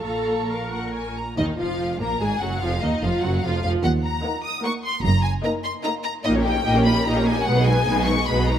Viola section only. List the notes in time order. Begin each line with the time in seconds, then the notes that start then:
0.04 A4
0.49 A#4
1.37 D#3
1.59 F3
2.00 A#3
2.21 G#3
2.41 F#3
2.62 F3
2.83 D#3
3.03 F3
3.23 F#3
3.44 F3
3.64 F3
4.24 A#3 D#4
4.64 A#3 D#4
5.44 A#3 D#4
5.85 A#3 D#4
6.25 A#3 D#4
6.35 C#4 G4
6.46 A#3 D#4
6.55 C#4 G4
6.65 A#3 D#4
6.76 C#4 G4
6.86 A#3 D#4
6.95 C#4 G4
7.06 A#3 D#4
7.16 C#4 G4
7.27 A#3 D#4
7.37 C#4 G4
7.46 G#3 D#4
7.56 B3
7.67 G#3 D#4
7.77 B3
7.87 G#3 D#4
7.97 B3
8.07 G#3 D#4
8.18 B3
8.28 G#3 D#4
8.39 B3
8.49 G#3 D#4